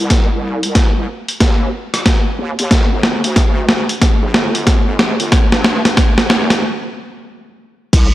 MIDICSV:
0, 0, Header, 1, 3, 480
1, 0, Start_track
1, 0, Key_signature, -3, "minor"
1, 0, Tempo, 652174
1, 77, Time_signature, 4, 2, 24, 8
1, 5993, End_track
2, 0, Start_track
2, 0, Title_t, "Wobble bass"
2, 0, Program_c, 0, 39
2, 0, Note_on_c, 0, 36, 95
2, 204, Note_off_c, 0, 36, 0
2, 230, Note_on_c, 0, 36, 95
2, 684, Note_off_c, 0, 36, 0
2, 710, Note_on_c, 0, 36, 93
2, 783, Note_off_c, 0, 36, 0
2, 1037, Note_on_c, 0, 39, 97
2, 1262, Note_off_c, 0, 39, 0
2, 1756, Note_on_c, 0, 39, 93
2, 1883, Note_off_c, 0, 39, 0
2, 1910, Note_on_c, 0, 39, 94
2, 1983, Note_off_c, 0, 39, 0
2, 1998, Note_on_c, 0, 31, 97
2, 2124, Note_off_c, 0, 31, 0
2, 2149, Note_on_c, 0, 31, 98
2, 2364, Note_off_c, 0, 31, 0
2, 2387, Note_on_c, 0, 38, 94
2, 2843, Note_off_c, 0, 38, 0
2, 3107, Note_on_c, 0, 34, 98
2, 3182, Note_off_c, 0, 34, 0
2, 3197, Note_on_c, 0, 31, 102
2, 3663, Note_off_c, 0, 31, 0
2, 3676, Note_on_c, 0, 34, 88
2, 3803, Note_off_c, 0, 34, 0
2, 3828, Note_on_c, 0, 31, 98
2, 4044, Note_off_c, 0, 31, 0
2, 4067, Note_on_c, 0, 43, 99
2, 4523, Note_off_c, 0, 43, 0
2, 4548, Note_on_c, 0, 31, 97
2, 4623, Note_off_c, 0, 31, 0
2, 4637, Note_on_c, 0, 29, 98
2, 4877, Note_off_c, 0, 29, 0
2, 5836, Note_on_c, 0, 36, 98
2, 5963, Note_off_c, 0, 36, 0
2, 5993, End_track
3, 0, Start_track
3, 0, Title_t, "Drums"
3, 75, Note_on_c, 9, 38, 54
3, 75, Note_on_c, 9, 42, 65
3, 76, Note_on_c, 9, 36, 93
3, 148, Note_off_c, 9, 38, 0
3, 148, Note_off_c, 9, 42, 0
3, 150, Note_off_c, 9, 36, 0
3, 464, Note_on_c, 9, 42, 51
3, 538, Note_off_c, 9, 42, 0
3, 553, Note_on_c, 9, 38, 59
3, 553, Note_on_c, 9, 42, 64
3, 556, Note_on_c, 9, 36, 92
3, 627, Note_off_c, 9, 38, 0
3, 627, Note_off_c, 9, 42, 0
3, 630, Note_off_c, 9, 36, 0
3, 946, Note_on_c, 9, 42, 50
3, 1019, Note_off_c, 9, 42, 0
3, 1034, Note_on_c, 9, 38, 64
3, 1034, Note_on_c, 9, 42, 69
3, 1036, Note_on_c, 9, 36, 93
3, 1107, Note_off_c, 9, 38, 0
3, 1107, Note_off_c, 9, 42, 0
3, 1110, Note_off_c, 9, 36, 0
3, 1426, Note_on_c, 9, 37, 39
3, 1426, Note_on_c, 9, 42, 53
3, 1499, Note_off_c, 9, 37, 0
3, 1499, Note_off_c, 9, 42, 0
3, 1514, Note_on_c, 9, 38, 64
3, 1514, Note_on_c, 9, 42, 66
3, 1517, Note_on_c, 9, 36, 92
3, 1587, Note_off_c, 9, 38, 0
3, 1587, Note_off_c, 9, 42, 0
3, 1590, Note_off_c, 9, 36, 0
3, 1904, Note_on_c, 9, 42, 54
3, 1978, Note_off_c, 9, 42, 0
3, 1993, Note_on_c, 9, 38, 70
3, 1993, Note_on_c, 9, 42, 66
3, 1996, Note_on_c, 9, 36, 95
3, 2067, Note_off_c, 9, 38, 0
3, 2067, Note_off_c, 9, 42, 0
3, 2070, Note_off_c, 9, 36, 0
3, 2233, Note_on_c, 9, 38, 70
3, 2306, Note_off_c, 9, 38, 0
3, 2385, Note_on_c, 9, 42, 54
3, 2459, Note_off_c, 9, 42, 0
3, 2474, Note_on_c, 9, 38, 75
3, 2474, Note_on_c, 9, 42, 64
3, 2476, Note_on_c, 9, 36, 90
3, 2548, Note_off_c, 9, 38, 0
3, 2548, Note_off_c, 9, 42, 0
3, 2550, Note_off_c, 9, 36, 0
3, 2713, Note_on_c, 9, 38, 79
3, 2787, Note_off_c, 9, 38, 0
3, 2866, Note_on_c, 9, 42, 50
3, 2939, Note_off_c, 9, 42, 0
3, 2956, Note_on_c, 9, 38, 81
3, 2956, Note_on_c, 9, 42, 68
3, 2957, Note_on_c, 9, 36, 97
3, 3029, Note_off_c, 9, 38, 0
3, 3029, Note_off_c, 9, 42, 0
3, 3030, Note_off_c, 9, 36, 0
3, 3196, Note_on_c, 9, 38, 82
3, 3270, Note_off_c, 9, 38, 0
3, 3348, Note_on_c, 9, 42, 53
3, 3422, Note_off_c, 9, 42, 0
3, 3435, Note_on_c, 9, 38, 83
3, 3435, Note_on_c, 9, 42, 66
3, 3437, Note_on_c, 9, 36, 99
3, 3509, Note_off_c, 9, 38, 0
3, 3509, Note_off_c, 9, 42, 0
3, 3510, Note_off_c, 9, 36, 0
3, 3674, Note_on_c, 9, 38, 87
3, 3748, Note_off_c, 9, 38, 0
3, 3826, Note_on_c, 9, 42, 53
3, 3899, Note_off_c, 9, 42, 0
3, 3915, Note_on_c, 9, 38, 89
3, 3915, Note_on_c, 9, 42, 64
3, 3917, Note_on_c, 9, 36, 98
3, 3989, Note_off_c, 9, 38, 0
3, 3989, Note_off_c, 9, 42, 0
3, 3990, Note_off_c, 9, 36, 0
3, 4065, Note_on_c, 9, 38, 80
3, 4139, Note_off_c, 9, 38, 0
3, 4154, Note_on_c, 9, 38, 94
3, 4228, Note_off_c, 9, 38, 0
3, 4307, Note_on_c, 9, 38, 84
3, 4307, Note_on_c, 9, 42, 52
3, 4381, Note_off_c, 9, 38, 0
3, 4381, Note_off_c, 9, 42, 0
3, 4395, Note_on_c, 9, 38, 95
3, 4395, Note_on_c, 9, 42, 62
3, 4397, Note_on_c, 9, 36, 97
3, 4469, Note_off_c, 9, 38, 0
3, 4469, Note_off_c, 9, 42, 0
3, 4470, Note_off_c, 9, 36, 0
3, 4547, Note_on_c, 9, 38, 84
3, 4620, Note_off_c, 9, 38, 0
3, 4636, Note_on_c, 9, 38, 97
3, 4710, Note_off_c, 9, 38, 0
3, 4786, Note_on_c, 9, 38, 80
3, 4786, Note_on_c, 9, 42, 51
3, 4860, Note_off_c, 9, 38, 0
3, 4860, Note_off_c, 9, 42, 0
3, 5836, Note_on_c, 9, 36, 115
3, 5837, Note_on_c, 9, 42, 80
3, 5837, Note_on_c, 9, 49, 96
3, 5910, Note_off_c, 9, 36, 0
3, 5911, Note_off_c, 9, 42, 0
3, 5911, Note_off_c, 9, 49, 0
3, 5993, End_track
0, 0, End_of_file